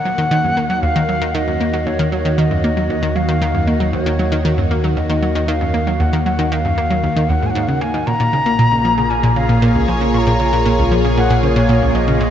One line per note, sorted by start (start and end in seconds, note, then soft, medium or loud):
0.00 8.04 D#2 medium
0.00 8.07 D#3 medium
0.00 8.07 A#3 medium
0.00 8.07 F#4 medium
0.00 0.64 A#4 medium
0.00 8.07 C#5 medium
0.00 0.84 F#5 loud
0.05 0.10 F#3 medium
0.18 0.26 D#3 loud
0.31 0.39 D#3 loud
0.44 0.56 F#2 medium
0.57 0.65 A#3 medium
0.70 0.75 F#3 medium
0.83 0.88 D#2 medium
0.83 1.36 F5 loud
0.96 1.04 D#3 loud
1.09 1.13 F#3 medium
1.22 1.29 D#3 loud
1.34 1.42 D#3 loud
1.34 1.88 D#5 medium
1.48 1.59 F#2 medium
1.61 1.68 A#3 medium
1.73 1.78 F#3 medium
1.86 1.91 D#2 medium
1.86 2.12 C#5 medium
1.99 2.07 D#3 loud
2.12 2.17 F#3 medium
2.12 2.40 C#5 medium
2.25 2.33 D#3 medium
2.38 2.46 D#3 loud
2.38 3.17 D#5 loud
2.51 2.63 F#2 medium
2.64 2.72 A#3 medium
2.77 2.82 F#3 medium
2.90 2.95 D#2 medium
3.03 3.11 D#3 loud
3.16 3.20 F#3 medium
3.16 3.69 F5 loud
3.29 3.36 D#3 loud
3.42 3.49 D#3 loud
3.55 3.66 F#2 medium
3.67 3.75 A#3 medium
3.67 3.93 D#5 medium
3.80 3.85 F#3 medium
3.93 3.98 D#2 medium
3.93 4.66 C#5 medium
4.06 4.14 D#3 loud
4.19 4.24 F#3 medium
4.32 4.40 D#3 loud
4.45 4.53 D#3 loud
4.58 4.70 F#2 medium
4.71 4.79 A#3 medium
4.84 4.89 F#3 medium
4.97 5.02 D#2 medium
4.97 5.50 D#5 medium
5.10 5.17 D#3 loud
5.23 5.27 F#3 medium
5.35 5.43 D#3 loud
5.48 5.56 D#3 loud
5.48 6.01 F5 medium
5.61 5.73 F#2 medium
5.74 5.82 A#3 medium
5.87 5.92 F#3 medium
6.00 6.05 D#2 medium
6.00 6.25 F#5 loud
6.13 6.21 D#3 loud
6.26 6.31 F#3 medium
6.26 6.53 F#5 medium
6.39 6.47 D#3 loud
6.51 6.60 D#3 loud
6.51 7.31 F5 loud
6.65 6.77 F#2 medium
6.78 6.86 A#3 medium
6.91 6.95 F#3 medium
7.04 7.08 D#2 medium
7.16 7.24 D#3 loud
7.29 7.37 D#2 medium
7.29 7.47 F#5 loud
7.43 7.50 G#2 medium
7.43 7.51 G#5 medium
7.50 7.64 F#5 loud
7.55 7.63 G#2 loud
7.63 7.68 F5 medium
7.67 7.80 C#3 medium
7.67 7.83 F#5 loud
7.81 7.89 A#3 medium
7.81 8.08 G#5 loud
7.94 8.02 D#3 medium
8.07 12.30 A#1 medium
8.07 12.30 A#2 medium
8.07 8.12 A#2 medium
8.07 9.12 A#5 loud
8.20 8.28 A#2 loud
8.33 8.38 C#3 medium
8.33 12.30 A#3 medium
8.46 8.54 A#2 medium
8.52 12.30 G#4 medium
8.59 8.67 A#2 loud
8.59 12.30 F4 medium
8.72 8.84 C#2 medium
8.85 8.93 F3 medium
8.98 9.02 C#3 medium
9.10 9.15 A#2 medium
9.10 9.35 G#5 loud
9.15 12.30 C#5 medium
9.23 9.31 A#2 loud
9.36 9.41 C#3 medium
9.36 9.84 F5 medium
9.49 9.57 A#2 medium
9.62 9.70 A#2 loud
9.75 9.87 C#2 medium
9.88 9.96 F3 medium
9.88 10.15 G#5 medium
10.01 10.06 C#3 medium
10.14 10.19 A#2 medium
10.14 10.19 C#6 medium
10.18 10.90 A#5 loud
10.27 10.35 A#2 loud
10.40 10.45 C#3 medium
10.53 10.61 A#2 loud
10.66 10.73 A#2 loud
10.79 10.90 C#2 medium
10.91 10.99 F3 medium
11.04 11.09 C#3 medium
11.17 11.22 A#2 medium
11.17 11.42 F#5 loud
11.30 11.38 A#2 loud
11.43 11.48 C#3 medium
11.43 11.97 C#5 loud
11.56 11.64 A#2 loud
11.69 11.77 A#2 loud
11.82 11.94 C#2 medium
11.95 12.03 F3 medium
11.95 12.30 D#5 loud
12.08 12.13 C#3 medium
12.21 12.25 A#2 medium